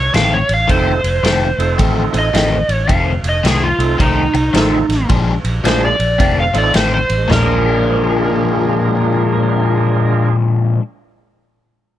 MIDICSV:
0, 0, Header, 1, 7, 480
1, 0, Start_track
1, 0, Tempo, 550459
1, 603, Time_signature, 4, 2, 24, 8
1, 10454, End_track
2, 0, Start_track
2, 0, Title_t, "Electric slide guitar"
2, 0, Program_c, 0, 29
2, 0, Note_on_c, 0, 73, 83
2, 122, Note_off_c, 0, 73, 0
2, 134, Note_on_c, 0, 77, 87
2, 283, Note_off_c, 0, 77, 0
2, 292, Note_on_c, 0, 73, 87
2, 442, Note_off_c, 0, 73, 0
2, 469, Note_on_c, 0, 77, 75
2, 612, Note_off_c, 0, 77, 0
2, 612, Note_on_c, 0, 72, 93
2, 1540, Note_off_c, 0, 72, 0
2, 1906, Note_on_c, 0, 75, 81
2, 2379, Note_off_c, 0, 75, 0
2, 2379, Note_on_c, 0, 73, 78
2, 2547, Note_off_c, 0, 73, 0
2, 2547, Note_on_c, 0, 77, 86
2, 2847, Note_off_c, 0, 77, 0
2, 2868, Note_on_c, 0, 75, 83
2, 3012, Note_off_c, 0, 75, 0
2, 3020, Note_on_c, 0, 68, 83
2, 3168, Note_off_c, 0, 68, 0
2, 3169, Note_on_c, 0, 65, 75
2, 3477, Note_off_c, 0, 65, 0
2, 3499, Note_on_c, 0, 63, 91
2, 4423, Note_off_c, 0, 63, 0
2, 4937, Note_on_c, 0, 72, 95
2, 5086, Note_off_c, 0, 72, 0
2, 5105, Note_on_c, 0, 74, 84
2, 5560, Note_off_c, 0, 74, 0
2, 5581, Note_on_c, 0, 77, 91
2, 5728, Note_off_c, 0, 77, 0
2, 5735, Note_on_c, 0, 74, 84
2, 5885, Note_off_c, 0, 74, 0
2, 5897, Note_on_c, 0, 72, 76
2, 6044, Note_off_c, 0, 72, 0
2, 6054, Note_on_c, 0, 72, 95
2, 6360, Note_off_c, 0, 72, 0
2, 6375, Note_on_c, 0, 70, 97
2, 8952, Note_off_c, 0, 70, 0
2, 10454, End_track
3, 0, Start_track
3, 0, Title_t, "Tonewheel organ"
3, 0, Program_c, 1, 16
3, 607, Note_on_c, 1, 57, 58
3, 611, Note_on_c, 1, 60, 54
3, 612, Note_on_c, 1, 63, 54
3, 614, Note_on_c, 1, 69, 67
3, 617, Note_on_c, 1, 65, 54
3, 877, Note_off_c, 1, 57, 0
3, 880, Note_off_c, 1, 60, 0
3, 880, Note_off_c, 1, 63, 0
3, 881, Note_off_c, 1, 69, 0
3, 882, Note_off_c, 1, 65, 0
3, 1384, Note_on_c, 1, 57, 62
3, 1389, Note_on_c, 1, 63, 59
3, 1389, Note_on_c, 1, 65, 55
3, 1390, Note_on_c, 1, 60, 57
3, 1391, Note_on_c, 1, 69, 70
3, 2007, Note_off_c, 1, 57, 0
3, 2010, Note_off_c, 1, 60, 0
3, 2010, Note_off_c, 1, 63, 0
3, 2010, Note_off_c, 1, 65, 0
3, 2011, Note_off_c, 1, 69, 0
3, 3303, Note_on_c, 1, 57, 75
3, 3303, Note_on_c, 1, 60, 68
3, 3305, Note_on_c, 1, 65, 69
3, 3307, Note_on_c, 1, 63, 73
3, 3310, Note_on_c, 1, 69, 83
3, 3464, Note_off_c, 1, 60, 0
3, 3465, Note_off_c, 1, 57, 0
3, 3465, Note_off_c, 1, 65, 0
3, 3467, Note_off_c, 1, 63, 0
3, 3468, Note_off_c, 1, 69, 0
3, 3964, Note_on_c, 1, 57, 62
3, 3964, Note_on_c, 1, 60, 59
3, 3967, Note_on_c, 1, 63, 58
3, 3969, Note_on_c, 1, 65, 60
3, 3972, Note_on_c, 1, 69, 71
3, 4237, Note_off_c, 1, 57, 0
3, 4237, Note_off_c, 1, 60, 0
3, 4238, Note_off_c, 1, 63, 0
3, 4239, Note_off_c, 1, 65, 0
3, 4240, Note_off_c, 1, 69, 0
3, 4920, Note_on_c, 1, 56, 73
3, 4923, Note_on_c, 1, 58, 69
3, 4925, Note_on_c, 1, 62, 63
3, 4928, Note_on_c, 1, 65, 65
3, 4930, Note_on_c, 1, 68, 80
3, 5195, Note_off_c, 1, 56, 0
3, 5196, Note_off_c, 1, 58, 0
3, 5197, Note_off_c, 1, 62, 0
3, 5199, Note_off_c, 1, 65, 0
3, 5200, Note_off_c, 1, 68, 0
3, 5704, Note_on_c, 1, 57, 76
3, 5706, Note_on_c, 1, 63, 76
3, 5707, Note_on_c, 1, 60, 77
3, 5711, Note_on_c, 1, 65, 73
3, 5711, Note_on_c, 1, 69, 91
3, 5865, Note_off_c, 1, 57, 0
3, 5866, Note_off_c, 1, 63, 0
3, 5867, Note_off_c, 1, 60, 0
3, 5869, Note_off_c, 1, 65, 0
3, 5869, Note_off_c, 1, 69, 0
3, 6257, Note_on_c, 1, 56, 66
3, 6309, Note_on_c, 1, 58, 62
3, 6364, Note_on_c, 1, 62, 60
3, 6421, Note_on_c, 1, 65, 58
3, 6472, Note_on_c, 1, 68, 71
3, 8927, Note_off_c, 1, 56, 0
3, 8953, Note_off_c, 1, 58, 0
3, 8981, Note_off_c, 1, 62, 0
3, 9009, Note_off_c, 1, 65, 0
3, 9035, Note_off_c, 1, 68, 0
3, 10454, End_track
4, 0, Start_track
4, 0, Title_t, "Overdriven electric guitar"
4, 0, Program_c, 2, 29
4, 120, Note_on_c, 2, 41, 83
4, 121, Note_on_c, 2, 51, 90
4, 126, Note_on_c, 2, 60, 88
4, 128, Note_on_c, 2, 57, 86
4, 318, Note_off_c, 2, 41, 0
4, 319, Note_off_c, 2, 51, 0
4, 321, Note_off_c, 2, 60, 0
4, 322, Note_off_c, 2, 57, 0
4, 588, Note_on_c, 2, 41, 81
4, 590, Note_on_c, 2, 51, 90
4, 594, Note_on_c, 2, 57, 88
4, 598, Note_on_c, 2, 60, 94
4, 792, Note_off_c, 2, 41, 0
4, 793, Note_off_c, 2, 51, 0
4, 795, Note_off_c, 2, 57, 0
4, 797, Note_off_c, 2, 60, 0
4, 1076, Note_on_c, 2, 41, 86
4, 1079, Note_on_c, 2, 51, 94
4, 1081, Note_on_c, 2, 57, 83
4, 1089, Note_on_c, 2, 60, 92
4, 1277, Note_off_c, 2, 41, 0
4, 1278, Note_off_c, 2, 51, 0
4, 1279, Note_off_c, 2, 57, 0
4, 1283, Note_off_c, 2, 60, 0
4, 1556, Note_on_c, 2, 41, 84
4, 1561, Note_on_c, 2, 51, 94
4, 1566, Note_on_c, 2, 57, 99
4, 1568, Note_on_c, 2, 60, 105
4, 1756, Note_off_c, 2, 41, 0
4, 1759, Note_off_c, 2, 51, 0
4, 1761, Note_off_c, 2, 57, 0
4, 1763, Note_off_c, 2, 60, 0
4, 2038, Note_on_c, 2, 41, 84
4, 2040, Note_on_c, 2, 51, 84
4, 2043, Note_on_c, 2, 57, 85
4, 2047, Note_on_c, 2, 60, 92
4, 2237, Note_off_c, 2, 41, 0
4, 2239, Note_off_c, 2, 51, 0
4, 2240, Note_off_c, 2, 57, 0
4, 2242, Note_off_c, 2, 60, 0
4, 2509, Note_on_c, 2, 41, 88
4, 2516, Note_on_c, 2, 51, 77
4, 2521, Note_on_c, 2, 57, 86
4, 2523, Note_on_c, 2, 60, 85
4, 2713, Note_off_c, 2, 41, 0
4, 2717, Note_off_c, 2, 51, 0
4, 2719, Note_off_c, 2, 57, 0
4, 2721, Note_off_c, 2, 60, 0
4, 2995, Note_on_c, 2, 41, 84
4, 2999, Note_on_c, 2, 51, 85
4, 3004, Note_on_c, 2, 57, 100
4, 3006, Note_on_c, 2, 60, 87
4, 3196, Note_off_c, 2, 41, 0
4, 3198, Note_off_c, 2, 51, 0
4, 3201, Note_off_c, 2, 57, 0
4, 3202, Note_off_c, 2, 60, 0
4, 3475, Note_on_c, 2, 41, 88
4, 3478, Note_on_c, 2, 57, 94
4, 3480, Note_on_c, 2, 51, 98
4, 3487, Note_on_c, 2, 60, 94
4, 3677, Note_off_c, 2, 41, 0
4, 3678, Note_off_c, 2, 57, 0
4, 3679, Note_off_c, 2, 51, 0
4, 3682, Note_off_c, 2, 60, 0
4, 3953, Note_on_c, 2, 41, 79
4, 3958, Note_on_c, 2, 51, 90
4, 3963, Note_on_c, 2, 57, 92
4, 3966, Note_on_c, 2, 60, 85
4, 4156, Note_off_c, 2, 41, 0
4, 4158, Note_off_c, 2, 51, 0
4, 4161, Note_off_c, 2, 57, 0
4, 4162, Note_off_c, 2, 60, 0
4, 4441, Note_on_c, 2, 46, 87
4, 4447, Note_on_c, 2, 53, 81
4, 4449, Note_on_c, 2, 56, 84
4, 4454, Note_on_c, 2, 62, 91
4, 4639, Note_off_c, 2, 46, 0
4, 4642, Note_off_c, 2, 53, 0
4, 4643, Note_off_c, 2, 56, 0
4, 4646, Note_off_c, 2, 62, 0
4, 4918, Note_on_c, 2, 46, 77
4, 4921, Note_on_c, 2, 53, 100
4, 4924, Note_on_c, 2, 56, 87
4, 4924, Note_on_c, 2, 62, 90
4, 5118, Note_off_c, 2, 46, 0
4, 5119, Note_off_c, 2, 53, 0
4, 5121, Note_off_c, 2, 56, 0
4, 5121, Note_off_c, 2, 62, 0
4, 5393, Note_on_c, 2, 41, 85
4, 5398, Note_on_c, 2, 51, 86
4, 5402, Note_on_c, 2, 57, 90
4, 5407, Note_on_c, 2, 60, 106
4, 5595, Note_off_c, 2, 41, 0
4, 5598, Note_off_c, 2, 51, 0
4, 5600, Note_off_c, 2, 57, 0
4, 5602, Note_off_c, 2, 60, 0
4, 5876, Note_on_c, 2, 41, 81
4, 5880, Note_on_c, 2, 51, 85
4, 5883, Note_on_c, 2, 57, 92
4, 5883, Note_on_c, 2, 60, 100
4, 6077, Note_off_c, 2, 41, 0
4, 6079, Note_off_c, 2, 51, 0
4, 6081, Note_off_c, 2, 57, 0
4, 6081, Note_off_c, 2, 60, 0
4, 6348, Note_on_c, 2, 46, 87
4, 6362, Note_on_c, 2, 53, 93
4, 6373, Note_on_c, 2, 56, 91
4, 6383, Note_on_c, 2, 62, 95
4, 9400, Note_off_c, 2, 46, 0
4, 9414, Note_off_c, 2, 53, 0
4, 9425, Note_off_c, 2, 56, 0
4, 9435, Note_off_c, 2, 62, 0
4, 10454, End_track
5, 0, Start_track
5, 0, Title_t, "Fingered electric bass"
5, 0, Program_c, 3, 33
5, 0, Note_on_c, 3, 36, 86
5, 91, Note_off_c, 3, 36, 0
5, 125, Note_on_c, 3, 33, 91
5, 367, Note_off_c, 3, 33, 0
5, 429, Note_on_c, 3, 33, 88
5, 570, Note_off_c, 3, 33, 0
5, 607, Note_on_c, 3, 29, 96
5, 849, Note_off_c, 3, 29, 0
5, 905, Note_on_c, 3, 29, 96
5, 1048, Note_off_c, 3, 29, 0
5, 1075, Note_on_c, 3, 29, 85
5, 1322, Note_off_c, 3, 29, 0
5, 1380, Note_on_c, 3, 29, 83
5, 1525, Note_off_c, 3, 29, 0
5, 1566, Note_on_c, 3, 33, 87
5, 1808, Note_off_c, 3, 33, 0
5, 1866, Note_on_c, 3, 33, 85
5, 2009, Note_off_c, 3, 33, 0
5, 2038, Note_on_c, 3, 33, 88
5, 2284, Note_off_c, 3, 33, 0
5, 2343, Note_on_c, 3, 33, 82
5, 2487, Note_off_c, 3, 33, 0
5, 2524, Note_on_c, 3, 29, 100
5, 2767, Note_off_c, 3, 29, 0
5, 2819, Note_on_c, 3, 29, 85
5, 2965, Note_off_c, 3, 29, 0
5, 2997, Note_on_c, 3, 36, 87
5, 3243, Note_off_c, 3, 36, 0
5, 3301, Note_on_c, 3, 36, 91
5, 3446, Note_off_c, 3, 36, 0
5, 3487, Note_on_c, 3, 36, 88
5, 3729, Note_off_c, 3, 36, 0
5, 3786, Note_on_c, 3, 36, 87
5, 3929, Note_off_c, 3, 36, 0
5, 3957, Note_on_c, 3, 33, 93
5, 4203, Note_off_c, 3, 33, 0
5, 4262, Note_on_c, 3, 33, 83
5, 4407, Note_off_c, 3, 33, 0
5, 4448, Note_on_c, 3, 34, 96
5, 4690, Note_off_c, 3, 34, 0
5, 4747, Note_on_c, 3, 34, 89
5, 4890, Note_off_c, 3, 34, 0
5, 4918, Note_on_c, 3, 34, 86
5, 5164, Note_off_c, 3, 34, 0
5, 5227, Note_on_c, 3, 34, 89
5, 5370, Note_off_c, 3, 34, 0
5, 5407, Note_on_c, 3, 29, 91
5, 5649, Note_off_c, 3, 29, 0
5, 5708, Note_on_c, 3, 33, 86
5, 5850, Note_off_c, 3, 33, 0
5, 5886, Note_on_c, 3, 33, 85
5, 6129, Note_off_c, 3, 33, 0
5, 6190, Note_on_c, 3, 33, 80
5, 6331, Note_off_c, 3, 33, 0
5, 6368, Note_on_c, 3, 34, 93
5, 9197, Note_off_c, 3, 34, 0
5, 10454, End_track
6, 0, Start_track
6, 0, Title_t, "Muted overdriven electric guitar strokes"
6, 1857, Note_on_c, 9, 29, 51
6, 1945, Note_off_c, 9, 29, 0
6, 3783, Note_on_c, 9, 29, 52
6, 3871, Note_off_c, 9, 29, 0
6, 5700, Note_on_c, 9, 29, 44
6, 5787, Note_off_c, 9, 29, 0
6, 10454, End_track
7, 0, Start_track
7, 0, Title_t, "Drums"
7, 123, Note_on_c, 9, 51, 76
7, 137, Note_on_c, 9, 38, 109
7, 211, Note_off_c, 9, 51, 0
7, 224, Note_off_c, 9, 38, 0
7, 427, Note_on_c, 9, 51, 62
7, 515, Note_off_c, 9, 51, 0
7, 604, Note_on_c, 9, 51, 87
7, 606, Note_on_c, 9, 36, 110
7, 692, Note_off_c, 9, 51, 0
7, 693, Note_off_c, 9, 36, 0
7, 909, Note_on_c, 9, 51, 61
7, 997, Note_off_c, 9, 51, 0
7, 1085, Note_on_c, 9, 51, 86
7, 1099, Note_on_c, 9, 38, 108
7, 1173, Note_off_c, 9, 51, 0
7, 1187, Note_off_c, 9, 38, 0
7, 1393, Note_on_c, 9, 51, 66
7, 1480, Note_off_c, 9, 51, 0
7, 1562, Note_on_c, 9, 51, 84
7, 1565, Note_on_c, 9, 36, 111
7, 1649, Note_off_c, 9, 51, 0
7, 1653, Note_off_c, 9, 36, 0
7, 1866, Note_on_c, 9, 51, 71
7, 1953, Note_off_c, 9, 51, 0
7, 2045, Note_on_c, 9, 51, 86
7, 2059, Note_on_c, 9, 38, 108
7, 2133, Note_off_c, 9, 51, 0
7, 2147, Note_off_c, 9, 38, 0
7, 2347, Note_on_c, 9, 51, 64
7, 2434, Note_off_c, 9, 51, 0
7, 2521, Note_on_c, 9, 51, 85
7, 2525, Note_on_c, 9, 36, 108
7, 2608, Note_off_c, 9, 51, 0
7, 2612, Note_off_c, 9, 36, 0
7, 2826, Note_on_c, 9, 51, 66
7, 2913, Note_off_c, 9, 51, 0
7, 3005, Note_on_c, 9, 51, 89
7, 3019, Note_on_c, 9, 38, 104
7, 3093, Note_off_c, 9, 51, 0
7, 3107, Note_off_c, 9, 38, 0
7, 3314, Note_on_c, 9, 51, 63
7, 3401, Note_off_c, 9, 51, 0
7, 3487, Note_on_c, 9, 36, 112
7, 3487, Note_on_c, 9, 51, 84
7, 3574, Note_off_c, 9, 51, 0
7, 3575, Note_off_c, 9, 36, 0
7, 3789, Note_on_c, 9, 51, 63
7, 3876, Note_off_c, 9, 51, 0
7, 3963, Note_on_c, 9, 51, 74
7, 3977, Note_on_c, 9, 38, 107
7, 4050, Note_off_c, 9, 51, 0
7, 4064, Note_off_c, 9, 38, 0
7, 4269, Note_on_c, 9, 51, 59
7, 4283, Note_on_c, 9, 38, 33
7, 4357, Note_off_c, 9, 51, 0
7, 4370, Note_off_c, 9, 38, 0
7, 4442, Note_on_c, 9, 51, 85
7, 4447, Note_on_c, 9, 36, 111
7, 4530, Note_off_c, 9, 51, 0
7, 4534, Note_off_c, 9, 36, 0
7, 4749, Note_on_c, 9, 51, 63
7, 4836, Note_off_c, 9, 51, 0
7, 4927, Note_on_c, 9, 51, 83
7, 4941, Note_on_c, 9, 38, 109
7, 5015, Note_off_c, 9, 51, 0
7, 5028, Note_off_c, 9, 38, 0
7, 5230, Note_on_c, 9, 51, 62
7, 5317, Note_off_c, 9, 51, 0
7, 5404, Note_on_c, 9, 51, 87
7, 5406, Note_on_c, 9, 36, 110
7, 5491, Note_off_c, 9, 51, 0
7, 5493, Note_off_c, 9, 36, 0
7, 5707, Note_on_c, 9, 51, 70
7, 5794, Note_off_c, 9, 51, 0
7, 5877, Note_on_c, 9, 51, 81
7, 5891, Note_on_c, 9, 38, 107
7, 5964, Note_off_c, 9, 51, 0
7, 5978, Note_off_c, 9, 38, 0
7, 6187, Note_on_c, 9, 51, 67
7, 6274, Note_off_c, 9, 51, 0
7, 6363, Note_on_c, 9, 43, 96
7, 6377, Note_on_c, 9, 38, 101
7, 6450, Note_off_c, 9, 43, 0
7, 6464, Note_off_c, 9, 38, 0
7, 10454, End_track
0, 0, End_of_file